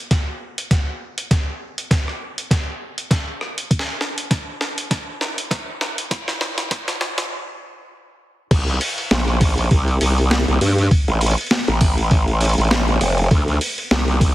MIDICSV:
0, 0, Header, 1, 3, 480
1, 0, Start_track
1, 0, Tempo, 600000
1, 1049, Time_signature, 4, 2, 24, 8
1, 11478, End_track
2, 0, Start_track
2, 0, Title_t, "Wobble bass"
2, 0, Program_c, 0, 39
2, 6808, Note_on_c, 0, 36, 103
2, 7032, Note_off_c, 0, 36, 0
2, 7289, Note_on_c, 0, 34, 97
2, 7752, Note_off_c, 0, 34, 0
2, 7769, Note_on_c, 0, 36, 96
2, 7992, Note_off_c, 0, 36, 0
2, 8010, Note_on_c, 0, 36, 99
2, 8363, Note_off_c, 0, 36, 0
2, 8385, Note_on_c, 0, 36, 98
2, 8473, Note_off_c, 0, 36, 0
2, 8490, Note_on_c, 0, 43, 98
2, 8712, Note_off_c, 0, 43, 0
2, 8865, Note_on_c, 0, 33, 96
2, 9082, Note_off_c, 0, 33, 0
2, 9345, Note_on_c, 0, 33, 97
2, 10043, Note_off_c, 0, 33, 0
2, 10064, Note_on_c, 0, 33, 99
2, 10392, Note_off_c, 0, 33, 0
2, 10409, Note_on_c, 0, 29, 96
2, 10632, Note_off_c, 0, 29, 0
2, 10648, Note_on_c, 0, 38, 104
2, 10872, Note_off_c, 0, 38, 0
2, 11129, Note_on_c, 0, 36, 100
2, 11478, Note_off_c, 0, 36, 0
2, 11478, End_track
3, 0, Start_track
3, 0, Title_t, "Drums"
3, 87, Note_on_c, 9, 36, 94
3, 87, Note_on_c, 9, 38, 52
3, 87, Note_on_c, 9, 42, 66
3, 167, Note_off_c, 9, 36, 0
3, 167, Note_off_c, 9, 38, 0
3, 167, Note_off_c, 9, 42, 0
3, 464, Note_on_c, 9, 42, 54
3, 544, Note_off_c, 9, 42, 0
3, 567, Note_on_c, 9, 36, 93
3, 568, Note_on_c, 9, 38, 52
3, 568, Note_on_c, 9, 42, 68
3, 647, Note_off_c, 9, 36, 0
3, 648, Note_off_c, 9, 38, 0
3, 648, Note_off_c, 9, 42, 0
3, 942, Note_on_c, 9, 42, 55
3, 1022, Note_off_c, 9, 42, 0
3, 1047, Note_on_c, 9, 36, 96
3, 1048, Note_on_c, 9, 38, 59
3, 1048, Note_on_c, 9, 42, 70
3, 1127, Note_off_c, 9, 36, 0
3, 1128, Note_off_c, 9, 38, 0
3, 1128, Note_off_c, 9, 42, 0
3, 1424, Note_on_c, 9, 42, 55
3, 1504, Note_off_c, 9, 42, 0
3, 1527, Note_on_c, 9, 36, 97
3, 1529, Note_on_c, 9, 38, 61
3, 1529, Note_on_c, 9, 42, 68
3, 1607, Note_off_c, 9, 36, 0
3, 1609, Note_off_c, 9, 38, 0
3, 1609, Note_off_c, 9, 42, 0
3, 1664, Note_on_c, 9, 37, 38
3, 1744, Note_off_c, 9, 37, 0
3, 1904, Note_on_c, 9, 42, 55
3, 1984, Note_off_c, 9, 42, 0
3, 2006, Note_on_c, 9, 36, 95
3, 2010, Note_on_c, 9, 38, 66
3, 2010, Note_on_c, 9, 42, 69
3, 2086, Note_off_c, 9, 36, 0
3, 2090, Note_off_c, 9, 38, 0
3, 2090, Note_off_c, 9, 42, 0
3, 2383, Note_on_c, 9, 42, 56
3, 2463, Note_off_c, 9, 42, 0
3, 2486, Note_on_c, 9, 36, 98
3, 2488, Note_on_c, 9, 38, 68
3, 2488, Note_on_c, 9, 42, 69
3, 2566, Note_off_c, 9, 36, 0
3, 2568, Note_off_c, 9, 38, 0
3, 2568, Note_off_c, 9, 42, 0
3, 2729, Note_on_c, 9, 37, 52
3, 2809, Note_off_c, 9, 37, 0
3, 2863, Note_on_c, 9, 42, 54
3, 2943, Note_off_c, 9, 42, 0
3, 2966, Note_on_c, 9, 36, 96
3, 2967, Note_on_c, 9, 42, 66
3, 3035, Note_on_c, 9, 38, 76
3, 3046, Note_off_c, 9, 36, 0
3, 3047, Note_off_c, 9, 42, 0
3, 3115, Note_off_c, 9, 38, 0
3, 3207, Note_on_c, 9, 38, 76
3, 3287, Note_off_c, 9, 38, 0
3, 3342, Note_on_c, 9, 42, 53
3, 3422, Note_off_c, 9, 42, 0
3, 3446, Note_on_c, 9, 36, 101
3, 3447, Note_on_c, 9, 38, 79
3, 3447, Note_on_c, 9, 42, 67
3, 3526, Note_off_c, 9, 36, 0
3, 3527, Note_off_c, 9, 38, 0
3, 3527, Note_off_c, 9, 42, 0
3, 3687, Note_on_c, 9, 38, 79
3, 3767, Note_off_c, 9, 38, 0
3, 3823, Note_on_c, 9, 42, 54
3, 3903, Note_off_c, 9, 42, 0
3, 3926, Note_on_c, 9, 36, 94
3, 3928, Note_on_c, 9, 38, 83
3, 3928, Note_on_c, 9, 42, 68
3, 4006, Note_off_c, 9, 36, 0
3, 4008, Note_off_c, 9, 38, 0
3, 4008, Note_off_c, 9, 42, 0
3, 4168, Note_on_c, 9, 38, 83
3, 4248, Note_off_c, 9, 38, 0
3, 4304, Note_on_c, 9, 42, 54
3, 4384, Note_off_c, 9, 42, 0
3, 4407, Note_on_c, 9, 36, 98
3, 4409, Note_on_c, 9, 38, 86
3, 4409, Note_on_c, 9, 42, 68
3, 4487, Note_off_c, 9, 36, 0
3, 4489, Note_off_c, 9, 38, 0
3, 4489, Note_off_c, 9, 42, 0
3, 4649, Note_on_c, 9, 38, 89
3, 4729, Note_off_c, 9, 38, 0
3, 4785, Note_on_c, 9, 42, 56
3, 4865, Note_off_c, 9, 42, 0
3, 4887, Note_on_c, 9, 36, 97
3, 4889, Note_on_c, 9, 38, 92
3, 4889, Note_on_c, 9, 42, 68
3, 4967, Note_off_c, 9, 36, 0
3, 4969, Note_off_c, 9, 38, 0
3, 4969, Note_off_c, 9, 42, 0
3, 5023, Note_on_c, 9, 38, 79
3, 5103, Note_off_c, 9, 38, 0
3, 5128, Note_on_c, 9, 38, 96
3, 5208, Note_off_c, 9, 38, 0
3, 5262, Note_on_c, 9, 38, 86
3, 5262, Note_on_c, 9, 42, 52
3, 5342, Note_off_c, 9, 38, 0
3, 5342, Note_off_c, 9, 42, 0
3, 5367, Note_on_c, 9, 36, 99
3, 5369, Note_on_c, 9, 38, 101
3, 5369, Note_on_c, 9, 42, 67
3, 5447, Note_off_c, 9, 36, 0
3, 5449, Note_off_c, 9, 38, 0
3, 5449, Note_off_c, 9, 42, 0
3, 5503, Note_on_c, 9, 38, 82
3, 5503, Note_on_c, 9, 42, 36
3, 5583, Note_off_c, 9, 38, 0
3, 5583, Note_off_c, 9, 42, 0
3, 5608, Note_on_c, 9, 38, 99
3, 5688, Note_off_c, 9, 38, 0
3, 5743, Note_on_c, 9, 38, 90
3, 5743, Note_on_c, 9, 42, 54
3, 5823, Note_off_c, 9, 38, 0
3, 5823, Note_off_c, 9, 42, 0
3, 6808, Note_on_c, 9, 36, 121
3, 6809, Note_on_c, 9, 46, 44
3, 6809, Note_on_c, 9, 49, 105
3, 6888, Note_off_c, 9, 36, 0
3, 6889, Note_off_c, 9, 46, 0
3, 6889, Note_off_c, 9, 49, 0
3, 6944, Note_on_c, 9, 46, 20
3, 7024, Note_off_c, 9, 46, 0
3, 7048, Note_on_c, 9, 46, 77
3, 7128, Note_off_c, 9, 46, 0
3, 7183, Note_on_c, 9, 46, 33
3, 7263, Note_off_c, 9, 46, 0
3, 7288, Note_on_c, 9, 38, 119
3, 7288, Note_on_c, 9, 46, 44
3, 7368, Note_off_c, 9, 38, 0
3, 7368, Note_off_c, 9, 46, 0
3, 7422, Note_on_c, 9, 37, 41
3, 7422, Note_on_c, 9, 46, 20
3, 7502, Note_off_c, 9, 37, 0
3, 7502, Note_off_c, 9, 46, 0
3, 7527, Note_on_c, 9, 46, 76
3, 7528, Note_on_c, 9, 36, 107
3, 7607, Note_off_c, 9, 46, 0
3, 7608, Note_off_c, 9, 36, 0
3, 7662, Note_on_c, 9, 46, 32
3, 7742, Note_off_c, 9, 46, 0
3, 7768, Note_on_c, 9, 36, 104
3, 7768, Note_on_c, 9, 46, 43
3, 7848, Note_off_c, 9, 36, 0
3, 7848, Note_off_c, 9, 46, 0
3, 7901, Note_on_c, 9, 46, 21
3, 7981, Note_off_c, 9, 46, 0
3, 8007, Note_on_c, 9, 46, 73
3, 8087, Note_off_c, 9, 46, 0
3, 8143, Note_on_c, 9, 46, 32
3, 8223, Note_off_c, 9, 46, 0
3, 8249, Note_on_c, 9, 38, 124
3, 8249, Note_on_c, 9, 46, 40
3, 8282, Note_off_c, 9, 46, 0
3, 8282, Note_on_c, 9, 46, 33
3, 8317, Note_off_c, 9, 46, 0
3, 8317, Note_on_c, 9, 46, 27
3, 8329, Note_off_c, 9, 38, 0
3, 8353, Note_off_c, 9, 46, 0
3, 8353, Note_on_c, 9, 46, 22
3, 8386, Note_off_c, 9, 46, 0
3, 8386, Note_on_c, 9, 46, 21
3, 8466, Note_off_c, 9, 46, 0
3, 8490, Note_on_c, 9, 46, 74
3, 8570, Note_off_c, 9, 46, 0
3, 8627, Note_on_c, 9, 46, 32
3, 8707, Note_off_c, 9, 46, 0
3, 8729, Note_on_c, 9, 36, 122
3, 8730, Note_on_c, 9, 46, 42
3, 8809, Note_off_c, 9, 36, 0
3, 8810, Note_off_c, 9, 46, 0
3, 8864, Note_on_c, 9, 46, 21
3, 8944, Note_off_c, 9, 46, 0
3, 8969, Note_on_c, 9, 46, 68
3, 9013, Note_off_c, 9, 46, 0
3, 9013, Note_on_c, 9, 46, 58
3, 9048, Note_off_c, 9, 46, 0
3, 9048, Note_on_c, 9, 46, 46
3, 9103, Note_off_c, 9, 46, 0
3, 9103, Note_on_c, 9, 46, 39
3, 9127, Note_off_c, 9, 46, 0
3, 9127, Note_on_c, 9, 46, 32
3, 9172, Note_off_c, 9, 46, 0
3, 9172, Note_on_c, 9, 46, 27
3, 9207, Note_off_c, 9, 46, 0
3, 9207, Note_on_c, 9, 38, 126
3, 9207, Note_on_c, 9, 46, 42
3, 9287, Note_off_c, 9, 38, 0
3, 9287, Note_off_c, 9, 46, 0
3, 9342, Note_on_c, 9, 46, 20
3, 9422, Note_off_c, 9, 46, 0
3, 9446, Note_on_c, 9, 37, 40
3, 9446, Note_on_c, 9, 46, 73
3, 9449, Note_on_c, 9, 36, 113
3, 9526, Note_off_c, 9, 37, 0
3, 9526, Note_off_c, 9, 46, 0
3, 9529, Note_off_c, 9, 36, 0
3, 9582, Note_on_c, 9, 46, 31
3, 9662, Note_off_c, 9, 46, 0
3, 9687, Note_on_c, 9, 46, 41
3, 9689, Note_on_c, 9, 36, 106
3, 9767, Note_off_c, 9, 46, 0
3, 9769, Note_off_c, 9, 36, 0
3, 9821, Note_on_c, 9, 46, 21
3, 9901, Note_off_c, 9, 46, 0
3, 9926, Note_on_c, 9, 46, 67
3, 9960, Note_off_c, 9, 46, 0
3, 9960, Note_on_c, 9, 46, 56
3, 9994, Note_off_c, 9, 46, 0
3, 9994, Note_on_c, 9, 46, 46
3, 10029, Note_off_c, 9, 46, 0
3, 10029, Note_on_c, 9, 46, 38
3, 10063, Note_off_c, 9, 46, 0
3, 10063, Note_on_c, 9, 46, 31
3, 10088, Note_off_c, 9, 46, 0
3, 10088, Note_on_c, 9, 46, 26
3, 10116, Note_off_c, 9, 46, 0
3, 10116, Note_on_c, 9, 46, 20
3, 10142, Note_off_c, 9, 46, 0
3, 10142, Note_on_c, 9, 46, 17
3, 10168, Note_off_c, 9, 46, 0
3, 10168, Note_on_c, 9, 38, 123
3, 10168, Note_on_c, 9, 46, 42
3, 10248, Note_off_c, 9, 38, 0
3, 10248, Note_off_c, 9, 46, 0
3, 10302, Note_on_c, 9, 46, 21
3, 10382, Note_off_c, 9, 46, 0
3, 10408, Note_on_c, 9, 37, 54
3, 10408, Note_on_c, 9, 46, 74
3, 10488, Note_off_c, 9, 37, 0
3, 10488, Note_off_c, 9, 46, 0
3, 10543, Note_on_c, 9, 46, 31
3, 10623, Note_off_c, 9, 46, 0
3, 10648, Note_on_c, 9, 36, 127
3, 10648, Note_on_c, 9, 46, 42
3, 10728, Note_off_c, 9, 36, 0
3, 10728, Note_off_c, 9, 46, 0
3, 10784, Note_on_c, 9, 46, 20
3, 10864, Note_off_c, 9, 46, 0
3, 10889, Note_on_c, 9, 46, 74
3, 10969, Note_off_c, 9, 46, 0
3, 11024, Note_on_c, 9, 46, 31
3, 11104, Note_off_c, 9, 46, 0
3, 11129, Note_on_c, 9, 38, 127
3, 11129, Note_on_c, 9, 46, 40
3, 11209, Note_off_c, 9, 38, 0
3, 11209, Note_off_c, 9, 46, 0
3, 11264, Note_on_c, 9, 37, 39
3, 11264, Note_on_c, 9, 46, 20
3, 11344, Note_off_c, 9, 37, 0
3, 11344, Note_off_c, 9, 46, 0
3, 11368, Note_on_c, 9, 36, 116
3, 11370, Note_on_c, 9, 46, 72
3, 11448, Note_off_c, 9, 36, 0
3, 11450, Note_off_c, 9, 46, 0
3, 11478, End_track
0, 0, End_of_file